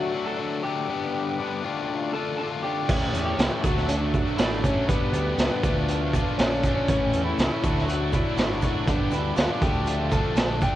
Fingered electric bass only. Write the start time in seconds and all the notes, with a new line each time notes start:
2.90 A1
3.02 A1
3.13 E2
3.38 C#2
3.64 D2
4.38 A1
4.89 G1
5.00 G1
5.12 D2
5.38 C#2
5.63 D2
6.38 A#1
6.88 A1
7.00 A1
7.13 E2
7.38 C#2
7.64 D2
8.37 G#1
8.88 G1
9.01 G1
9.12 D2
9.37 D2
9.62 D2
10.36 A#1